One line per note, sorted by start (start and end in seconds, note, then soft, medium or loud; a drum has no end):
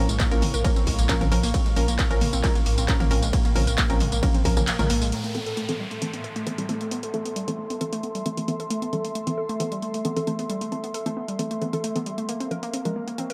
0.00 5.17 A2 medium
0.00 5.12 A#4 medium
0.00 5.12 F5 medium
0.00 5.12 C#6 medium
0.09 0.19 A#1 medium
0.09 0.13 G#3 medium
0.09 closed hi-hat medium
0.09 tambourine medium
0.20 0.27 A#3 medium
0.20 kick loud
0.20 clap loud
0.20 closed hi-hat medium
0.20 ride medium
0.20 tambourine medium
0.31 0.42 A#1 medium
0.31 0.40 F3 loud
0.31 0.38 A#3 medium
0.31 0.40 C#4 medium
0.31 0.40 A#4 loud
0.31 closed hi-hat medium
0.31 tambourine soft
0.42 0.49 C4 medium
0.42 open hi-hat loud
0.42 mid tom medium
0.54 0.64 A#1 medium
0.54 0.58 A#4 medium
0.54 closed hi-hat soft
0.54 tambourine medium
0.64 1.07 F3 medium
0.64 0.71 A#3 loud
0.64 1.07 C#4 medium
0.64 1.07 A#4 loud
0.64 kick loud
0.64 closed hi-hat medium
0.64 ride medium
0.64 tambourine medium
0.76 0.80 C4 medium
0.76 closed hi-hat medium
0.76 tambourine soft
0.87 0.98 A#1 loud
0.87 0.91 G#3 medium
0.87 kick medium
0.87 open hi-hat loud
0.98 1.09 A#1 medium
0.98 1.05 A#3 medium
0.98 closed hi-hat soft
0.98 tambourine medium
1.09 1.19 F3 medium
1.09 1.16 A#3 medium
1.09 1.19 C#4 medium
1.09 1.19 A#4 medium
1.09 kick loud
1.09 clap loud
1.09 closed hi-hat medium
1.09 ride medium
1.09 tambourine medium
1.21 1.31 A#1 medium
1.21 1.30 F3 medium
1.21 1.27 C4 medium
1.21 1.30 C#4 medium
1.21 1.30 A#4 medium
1.21 closed hi-hat soft
1.21 mid tom loud
1.21 tambourine soft
1.32 1.43 A#1 loud
1.32 1.47 F3 loud
1.32 1.47 C#4 medium
1.32 1.47 A#4 loud
1.32 1.36 A#4 medium
1.32 open hi-hat loud
1.43 1.54 A#1 medium
1.43 1.50 A#3 loud
1.43 open hi-hat medium
1.43 tambourine medium
1.54 1.58 C4 medium
1.54 kick loud
1.54 closed hi-hat medium
1.54 ride medium
1.54 tambourine medium
1.66 1.70 G#3 medium
1.66 closed hi-hat medium
1.66 tambourine soft
1.76 1.88 A#1 loud
1.76 1.86 F3 medium
1.76 1.83 A#3 medium
1.76 1.86 C#4 medium
1.76 1.86 A#4 loud
1.76 open hi-hat loud
1.88 1.99 A#1 medium
1.88 1.95 A#3 medium
1.88 closed hi-hat medium
1.88 tambourine medium
1.99 2.06 C4 medium
1.99 kick loud
1.99 clap loud
1.99 closed hi-hat medium
1.99 ride medium
1.99 tambourine medium
2.10 2.21 A#1 medium
2.10 2.19 F3 loud
2.10 2.19 C#4 medium
2.10 2.19 A#4 loud
2.10 2.14 A#4 medium
2.10 closed hi-hat medium
2.10 tambourine soft
2.21 2.28 A#3 loud
2.21 open hi-hat loud
2.21 mid tom medium
2.33 2.43 A#1 medium
2.33 2.37 C4 medium
2.33 closed hi-hat soft
2.33 tambourine medium
2.44 2.86 F3 medium
2.44 2.48 G#3 medium
2.44 2.86 C#4 medium
2.44 2.86 A#4 medium
2.44 kick loud
2.44 clap medium
2.44 open hi-hat medium
2.44 ride medium
2.44 tambourine medium
2.55 2.62 A#3 medium
2.55 closed hi-hat medium
2.55 tambourine soft
2.66 2.77 A#1 medium
2.66 2.73 A#3 medium
2.66 open hi-hat loud
2.78 2.88 A#1 medium
2.78 2.84 C4 medium
2.78 closed hi-hat medium
2.78 tambourine medium
2.88 2.98 F3 medium
2.88 2.98 C#4 medium
2.88 2.93 A#4 medium
2.88 2.98 A#4 loud
2.88 kick loud
2.88 clap loud
2.88 closed hi-hat medium
2.88 ride medium
2.88 tambourine medium
3.00 3.10 A#1 medium
3.00 3.09 F3 medium
3.00 3.06 A#3 loud
3.00 3.09 C#4 medium
3.00 3.09 A#4 medium
3.00 closed hi-hat medium
3.00 mid tom medium
3.00 tambourine soft
3.11 3.22 A#1 loud
3.11 3.26 F3 medium
3.11 3.15 C4 medium
3.11 3.26 C#4 medium
3.11 3.26 A#4 loud
3.11 open hi-hat loud
3.23 3.33 A#1 medium
3.23 3.26 G#3 medium
3.23 closed hi-hat soft
3.23 tambourine medium
3.33 3.40 A#3 medium
3.33 kick loud
3.33 closed hi-hat medium
3.33 ride medium
3.33 tambourine medium
3.45 3.51 A#3 medium
3.45 closed hi-hat medium
3.45 tambourine soft
3.56 3.67 A#1 loud
3.56 3.65 F3 medium
3.56 3.63 C4 medium
3.56 3.65 C#4 medium
3.56 3.65 A#4 loud
3.56 open hi-hat loud
3.56 mid tom medium
3.67 3.78 A#1 medium
3.67 3.71 A#4 medium
3.67 closed hi-hat medium
3.67 tambourine medium
3.78 3.85 A#3 loud
3.78 kick loud
3.78 clap loud
3.78 closed hi-hat medium
3.78 ride medium
3.78 tambourine medium
3.90 4.00 A#1 medium
3.90 3.98 F3 loud
3.90 3.93 C4 medium
3.90 3.98 C#4 medium
3.90 3.98 A#4 loud
3.90 closed hi-hat medium
3.90 tambourine soft
4.00 4.05 G#3 medium
4.00 open hi-hat loud
4.00 mid tom medium
4.12 4.23 A#1 medium
4.12 4.18 A#3 medium
4.12 closed hi-hat medium
4.12 tambourine medium
4.23 4.43 F3 medium
4.23 4.30 A#3 medium
4.23 4.43 C#4 medium
4.23 4.43 A#4 medium
4.23 kick loud
4.23 closed hi-hat medium
4.23 ride medium
4.23 tambourine medium
4.34 4.41 C4 medium
4.34 closed hi-hat medium
4.34 tambourine soft
4.45 4.56 A#1 medium
4.45 4.55 F3 medium
4.45 4.49 A#3 medium
4.45 4.55 C#4 medium
4.45 4.55 A#4 loud
4.45 kick medium
4.45 open hi-hat loud
4.57 4.67 A#1 medium
4.57 4.71 F3 medium
4.57 4.63 A#3 medium
4.57 4.71 C#4 medium
4.57 4.71 A#4 medium
4.57 closed hi-hat medium
4.57 mid tom medium
4.57 tambourine medium
4.67 4.72 A#3 medium
4.67 clap loud
4.67 closed hi-hat medium
4.67 ride medium
4.67 tambourine medium
4.79 4.89 A#1 medium
4.79 4.88 F3 medium
4.79 4.83 G#3 medium
4.79 4.88 C#4 medium
4.79 4.88 A#4 loud
4.79 closed hi-hat medium
4.79 mid tom medium
4.79 tambourine soft
4.90 5.01 A#1 loud
4.90 4.97 A#3 loud
4.90 open hi-hat loud
5.02 5.12 A#1 medium
5.02 5.05 G#3 medium
5.02 open hi-hat medium
5.02 tambourine medium
5.12 5.19 A3 medium
5.12 12.29 A4 medium
5.12 closed hi-hat medium
5.12 downlifter medium
5.24 5.30 A3 medium
5.24 closed hi-hat soft
5.35 5.44 E3 medium
5.35 5.42 B3 medium
5.35 5.44 C4 medium
5.35 5.44 A4 loud
5.35 closed hi-hat soft
5.39 12.29 E5 medium
5.39 12.29 C6 medium
5.46 5.50 A4 medium
5.46 closed hi-hat medium
5.57 5.64 A3 loud
5.57 closed hi-hat medium
5.69 5.77 E3 loud
5.69 5.73 B3 medium
5.69 5.77 C4 medium
5.69 5.77 A4 loud
5.69 closed hi-hat medium
5.80 5.84 G3 medium
5.91 5.98 A3 medium
5.91 closed hi-hat soft
6.02 6.44 E3 medium
6.02 6.09 A3 medium
6.02 6.44 C4 medium
6.02 6.44 A4 medium
6.02 closed hi-hat medium
6.13 6.20 B3 medium
6.13 closed hi-hat medium
6.24 6.28 A4 medium
6.24 closed hi-hat soft
6.36 6.42 A3 loud
6.36 closed hi-hat soft
6.47 6.56 E3 medium
6.47 6.51 B3 medium
6.47 6.56 C4 medium
6.47 6.56 A4 medium
6.47 closed hi-hat medium
6.58 6.67 E3 medium
6.58 6.62 G3 medium
6.58 6.67 C4 medium
6.58 6.67 A4 medium
6.58 closed hi-hat medium
6.69 6.84 E3 medium
6.69 6.76 A3 medium
6.69 6.84 C4 medium
6.69 6.84 A4 loud
6.69 closed hi-hat medium
6.81 6.87 A3 medium
6.81 closed hi-hat soft
6.91 6.98 B3 medium
6.91 closed hi-hat medium
7.03 7.07 A4 medium
7.03 closed hi-hat medium
7.14 7.23 E3 medium
7.14 7.21 A3 medium
7.14 7.23 C4 medium
7.14 7.23 A4 loud
7.14 closed hi-hat soft
7.25 7.29 B3 medium
7.25 closed hi-hat medium
7.36 7.40 G3 medium
7.36 closed hi-hat medium
7.48 7.57 E3 loud
7.48 7.54 A3 medium
7.48 7.57 C4 medium
7.48 7.57 A4 loud
7.48 closed hi-hat medium
7.59 7.66 A3 medium
7.70 7.77 B3 medium
7.70 closed hi-hat medium
7.81 8.23 E3 medium
7.81 8.23 C4 medium
7.81 8.23 A4 loud
7.81 7.85 A4 medium
7.81 closed hi-hat medium
7.93 7.99 A3 loud
7.93 closed hi-hat medium
8.03 8.08 B3 medium
8.03 closed hi-hat soft
8.15 8.19 G3 medium
8.15 closed hi-hat medium
8.26 8.35 E3 medium
8.26 8.33 A3 medium
8.26 8.35 C4 medium
8.26 8.35 A4 medium
8.26 closed hi-hat medium
8.37 8.46 E3 medium
8.37 8.44 A3 medium
8.37 8.46 C4 medium
8.37 8.46 A4 medium
8.37 closed hi-hat medium
8.48 8.63 E3 medium
8.48 8.55 B3 medium
8.48 8.63 C4 medium
8.48 8.63 A4 loud
8.48 closed hi-hat medium
8.60 8.64 A4 medium
8.60 closed hi-hat soft
8.70 8.77 A3 loud
8.70 closed hi-hat medium
8.82 8.86 B3 medium
8.82 closed hi-hat medium
8.93 9.02 E3 medium
8.93 8.97 G3 medium
8.93 9.02 C4 medium
8.93 9.02 A4 loud
8.93 closed hi-hat soft
9.05 9.11 A3 medium
9.05 closed hi-hat medium
9.15 9.22 A3 medium
9.15 closed hi-hat medium
9.27 9.36 E3 loud
9.27 9.33 B3 medium
9.27 9.36 C4 medium
9.27 9.36 A4 loud
9.27 closed hi-hat medium
9.38 9.42 A4 medium
9.49 9.56 A3 loud
9.49 closed hi-hat soft
9.60 10.02 E3 medium
9.60 9.64 B3 medium
9.60 10.02 C4 medium
9.60 10.02 A4 medium
9.60 closed hi-hat medium
9.72 9.76 G3 medium
9.72 closed hi-hat medium
9.82 9.89 A3 medium
9.82 closed hi-hat soft
9.94 10.00 A3 medium
9.94 closed hi-hat medium
10.05 10.14 E3 medium
10.05 10.12 B3 medium
10.05 10.14 C4 medium
10.05 10.14 A4 medium
10.05 closed hi-hat medium
10.16 10.25 E3 medium
10.16 10.25 C4 medium
10.16 10.20 A4 medium
10.16 10.25 A4 medium
10.16 closed hi-hat medium
10.27 10.42 E3 medium
10.27 10.34 A3 loud
10.27 10.42 C4 medium
10.27 10.42 A4 loud
10.27 closed hi-hat medium
10.39 10.43 B3 medium
10.39 closed hi-hat soft
10.50 10.54 G3 medium
10.50 closed hi-hat medium
10.61 10.68 A3 medium
10.61 closed hi-hat soft
10.72 10.82 E3 medium
10.72 10.79 A3 medium
10.72 10.82 C4 medium
10.72 10.82 A4 loud
10.72 closed hi-hat soft
10.84 10.90 B3 medium
10.84 closed hi-hat soft
10.94 10.99 A4 medium
10.94 closed hi-hat medium
11.06 11.15 E3 loud
11.06 11.12 A3 loud
11.06 11.15 C4 medium
11.06 11.15 A4 loud
11.06 closed hi-hat medium
11.17 11.21 B3 medium
11.28 11.32 G3 medium
11.28 closed hi-hat medium
11.39 11.59 E3 medium
11.39 11.46 A3 medium
11.39 11.59 C4 medium
11.39 11.59 A4 loud
11.39 closed hi-hat medium
11.51 11.57 A3 medium
11.51 closed hi-hat medium
11.62 11.71 E3 medium
11.62 11.68 B3 medium
11.62 11.71 C4 medium
11.62 11.71 A4 medium
11.62 closed hi-hat soft
11.73 11.88 E3 medium
11.73 11.87 C4 medium
11.73 11.77 A4 medium
11.73 11.87 A4 medium
11.73 closed hi-hat soft
11.84 11.91 A3 loud
11.84 closed hi-hat medium
11.96 12.04 E3 medium
11.96 11.99 B3 medium
11.96 12.04 C4 medium
11.96 12.04 A4 medium
11.96 closed hi-hat medium
12.06 12.10 G3 medium
12.06 closed hi-hat medium
12.18 12.24 A3 medium
12.18 closed hi-hat soft
12.29 12.36 A#3 medium
12.29 13.33 A#4 medium
12.29 closed hi-hat medium
12.35 13.33 F5 medium
12.40 12.47 C4 medium
12.40 closed hi-hat soft
12.51 12.61 F3 medium
12.51 12.61 C#4 medium
12.51 12.55 A#4 medium
12.51 12.61 A#4 loud
12.51 closed hi-hat soft
12.63 12.69 A#3 loud
12.63 closed hi-hat soft
12.73 12.78 C4 medium
12.73 closed hi-hat medium
12.85 12.94 F3 medium
12.85 12.89 G#3 medium
12.85 12.94 C#4 medium
12.85 12.94 A#4 loud
12.85 closed hi-hat medium
12.96 13.03 A#3 medium
12.96 13.33 C#6 medium
13.08 13.14 A#3 medium
13.08 closed hi-hat soft
13.18 13.33 F3 medium
13.18 13.25 C4 medium
13.18 13.33 C#4 medium
13.18 13.33 A#4 medium
13.18 closed hi-hat medium
13.30 13.33 A#4 medium
13.30 closed hi-hat soft